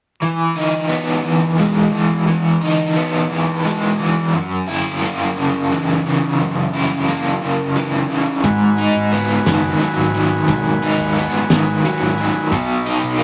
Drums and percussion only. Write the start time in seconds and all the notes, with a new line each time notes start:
8.44 kick, closed hi-hat
8.78 closed hi-hat
9.12 closed hi-hat
9.46 snare, closed hi-hat
9.79 closed hi-hat
10.14 closed hi-hat
10.48 kick, closed hi-hat
10.82 closed hi-hat
11.16 closed hi-hat
11.50 snare, closed hi-hat
11.85 closed hi-hat
12.18 closed hi-hat
12.52 kick, closed hi-hat
12.86 closed hi-hat
13.20 closed hi-hat